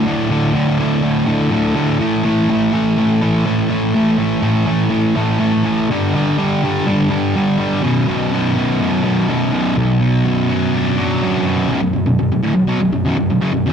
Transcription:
distorted electric guitar
0.06 D2 A2 D3
0.30 D2 A2 D3
0.54 D2 A2 D3
0.79 D2 A2 D3
1.03 D2 A2 D3
1.27 D2 A2 D3
1.51 D2 A2 D3
1.75 D2 A2 D3
2.00 A2 E3 A3
2.24 A2 E3 A3
2.49 A2 E3 A3
2.73 A2 E3 A3
2.98 A2 E3 A3
3.22 A2 E3 A3
3.46 A2 E3 A3
3.70 A2 E3 A3
3.94 A2 E3 A3
4.18 A2 E3 A3
4.42 A2 E3 A3
4.66 A2 E3 A3
4.90 A2 E3 A3
5.15 A2 E3 A3
5.39 A2 E3 A3
5.64 A2 E3 A3
5.90 G2 D3 G3
6.14 G2 D3 G3
6.37 G2 D3 G3
6.63 G2 D3 G3
6.87 G2 D3 G3
7.11 G2 D3 G3
7.35 G2 D3 G3
7.59 G2 D3 G3
7.83 B1 F#2 B2
8.08 B1 F#2 B2
8.32 B1 F#2 B2
8.56 B1 F#2 B2
8.80 B1 F#2 B2
9.03 B1 F#2 B2
9.29 B1 F#2 B2
9.52 B1 F#2 B2
9.78 B1
10.01 B2
10.25 F#2
10.49 F#3
10.74 D4
10.97 F#3
11.22 F#2
11.46 B2
11.69 B1 F#2
11.82 B1 F#2
11.94 B1 F#2
12.06 B1 F#2
12.19 B1 F#2
12.32 B1 F#2
12.43 D2 A2
12.55 B1 F#2
12.67 B2 F#3
12.81 B1 F#2
12.93 B1 F#2
13.05 B1 F#2
13.18 B1 F#2
13.30 B1 F#2
13.41 F#2 C#3
13.53 B1 F#2
13.66 B1 F#2

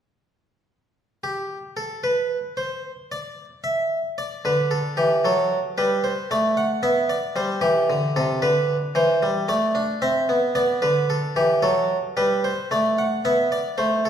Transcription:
harpsichord
1.23 G4
1.77 A4
2.04 B4
2.57 C5
3.12 D5
3.64 E5
4.18 D5
4.45 D3 B4
4.71 A4
4.97 E3 G4
5.25 F#3 A4
5.78 G3 B4
6.04 C5
6.31 A3 D5
6.57 F#5
6.83 B3 E5
7.09 D5
7.36 G3 C5
7.61 E3 G4
7.90 D3
8.16 C3 A4
8.42 D3 B4
8.95 E3 C5
9.23 G3
9.48 A3 D5
9.75 D4
10.02 C4 E5
10.29 B3
10.55 B3 D5
10.82 D3 B4
11.10 A4
11.36 E3 G4
11.62 F#3 A4
12.17 G3 B4
12.44 C5
12.71 A3 D5
12.98 F#5
13.25 B3 E5
13.52 D5
13.78 A3 C5
14.05 A4

